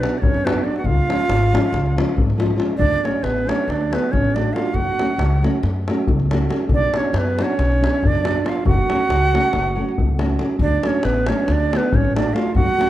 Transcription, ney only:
0, 0, Header, 1, 2, 480
1, 0, Start_track
1, 0, Tempo, 433526
1, 929, Time_signature, 9, 3, 24, 8
1, 14280, End_track
2, 0, Start_track
2, 0, Title_t, "Ney"
2, 0, Program_c, 0, 77
2, 0, Note_on_c, 0, 71, 81
2, 202, Note_on_c, 0, 74, 55
2, 218, Note_off_c, 0, 71, 0
2, 227, Note_on_c, 0, 73, 95
2, 243, Note_off_c, 0, 74, 0
2, 499, Note_on_c, 0, 71, 88
2, 516, Note_off_c, 0, 73, 0
2, 708, Note_on_c, 0, 74, 94
2, 725, Note_off_c, 0, 71, 0
2, 850, Note_off_c, 0, 74, 0
2, 857, Note_on_c, 0, 78, 61
2, 948, Note_on_c, 0, 77, 127
2, 965, Note_off_c, 0, 78, 0
2, 2413, Note_off_c, 0, 77, 0
2, 3072, Note_on_c, 0, 74, 115
2, 3374, Note_on_c, 0, 73, 82
2, 3391, Note_off_c, 0, 74, 0
2, 3579, Note_on_c, 0, 71, 83
2, 3596, Note_off_c, 0, 73, 0
2, 3859, Note_on_c, 0, 73, 88
2, 3876, Note_off_c, 0, 71, 0
2, 4097, Note_on_c, 0, 74, 84
2, 4113, Note_off_c, 0, 73, 0
2, 4354, Note_on_c, 0, 71, 84
2, 4370, Note_off_c, 0, 74, 0
2, 4559, Note_on_c, 0, 73, 90
2, 4575, Note_off_c, 0, 71, 0
2, 4808, Note_on_c, 0, 74, 86
2, 4825, Note_off_c, 0, 73, 0
2, 5016, Note_on_c, 0, 77, 89
2, 5033, Note_off_c, 0, 74, 0
2, 5257, Note_on_c, 0, 78, 114
2, 5274, Note_off_c, 0, 77, 0
2, 6014, Note_off_c, 0, 78, 0
2, 7460, Note_on_c, 0, 74, 113
2, 7723, Note_on_c, 0, 73, 87
2, 7739, Note_off_c, 0, 74, 0
2, 7943, Note_on_c, 0, 71, 88
2, 7959, Note_off_c, 0, 73, 0
2, 8225, Note_on_c, 0, 73, 99
2, 8242, Note_off_c, 0, 71, 0
2, 8930, Note_on_c, 0, 74, 103
2, 8947, Note_off_c, 0, 73, 0
2, 9394, Note_on_c, 0, 77, 81
2, 9411, Note_off_c, 0, 74, 0
2, 9593, Note_off_c, 0, 77, 0
2, 9606, Note_on_c, 0, 78, 127
2, 11273, Note_off_c, 0, 78, 0
2, 11755, Note_on_c, 0, 74, 99
2, 12035, Note_on_c, 0, 73, 82
2, 12052, Note_off_c, 0, 74, 0
2, 12231, Note_on_c, 0, 71, 84
2, 12247, Note_off_c, 0, 73, 0
2, 12494, Note_on_c, 0, 73, 80
2, 12511, Note_off_c, 0, 71, 0
2, 12752, Note_on_c, 0, 74, 94
2, 12769, Note_off_c, 0, 73, 0
2, 13027, Note_on_c, 0, 71, 82
2, 13043, Note_off_c, 0, 74, 0
2, 13238, Note_on_c, 0, 73, 94
2, 13255, Note_off_c, 0, 71, 0
2, 13462, Note_off_c, 0, 73, 0
2, 13469, Note_on_c, 0, 74, 92
2, 13658, Note_on_c, 0, 77, 89
2, 13675, Note_off_c, 0, 74, 0
2, 13884, Note_off_c, 0, 77, 0
2, 13898, Note_on_c, 0, 78, 127
2, 14280, Note_off_c, 0, 78, 0
2, 14280, End_track
0, 0, End_of_file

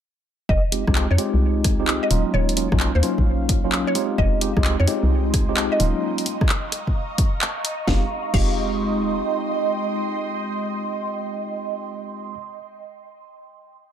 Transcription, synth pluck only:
0, 0, Header, 1, 2, 480
1, 0, Start_track
1, 0, Key_signature, -4, "minor"
1, 0, Tempo, 461538
1, 512, Time_signature, 4, 2, 24, 8
1, 14478, End_track
2, 0, Start_track
2, 0, Title_t, "Synth pluck"
2, 0, Program_c, 0, 84
2, 511, Note_on_c, 0, 75, 92
2, 725, Note_off_c, 0, 75, 0
2, 1150, Note_on_c, 0, 73, 88
2, 1249, Note_off_c, 0, 73, 0
2, 2110, Note_on_c, 0, 75, 90
2, 2297, Note_off_c, 0, 75, 0
2, 2430, Note_on_c, 0, 73, 93
2, 2644, Note_off_c, 0, 73, 0
2, 3069, Note_on_c, 0, 72, 86
2, 3169, Note_off_c, 0, 72, 0
2, 4028, Note_on_c, 0, 73, 89
2, 4217, Note_off_c, 0, 73, 0
2, 4350, Note_on_c, 0, 75, 96
2, 4564, Note_off_c, 0, 75, 0
2, 4987, Note_on_c, 0, 73, 89
2, 5088, Note_off_c, 0, 73, 0
2, 5947, Note_on_c, 0, 75, 90
2, 6136, Note_off_c, 0, 75, 0
2, 8190, Note_on_c, 0, 77, 89
2, 8354, Note_off_c, 0, 77, 0
2, 8670, Note_on_c, 0, 77, 93
2, 12831, Note_off_c, 0, 77, 0
2, 14478, End_track
0, 0, End_of_file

